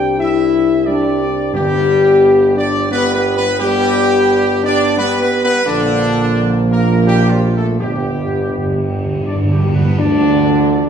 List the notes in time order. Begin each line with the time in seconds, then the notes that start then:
Already playing: C2 G3 D4 G4 G5
0.18 E4 E5
0.85 G3 D4 D5
1.21 C4
1.53 G1 G2 G3 B3 G4
2.56 D4 D5
2.90 G3 B3 B4
3.14 B3 B4
3.36 B3 B4
3.59 G3 B3 G4
4.63 D4 D5
4.97 G3 B3 B4
5.20 B3 B4
5.43 B3 B4
5.65 A#1 D3 F3 A#3 D4
6.70 A#3 A#4
7.07 G3 G4
7.29 F3 F4
7.55 A3 A4
7.79 G1 G2 G3 B3 G4
7.88 G2
7.96 G2
8.04 G2
8.11 G2
8.19 G2
8.27 G2
8.35 G2
8.42 G2
8.50 G2
8.58 G2
8.66 G2
8.74 G2
8.82 G2
8.90 G2
8.97 G2
9.05 G2
9.13 G2
9.21 G2 D5
9.25 G2 D4
9.36 G2
9.44 G2
9.50 G2 G3 G4
9.60 G2
9.68 G2
9.74 G2 B3 B4
9.83 G2
9.98 D2 D3 D4 D5, tam-tam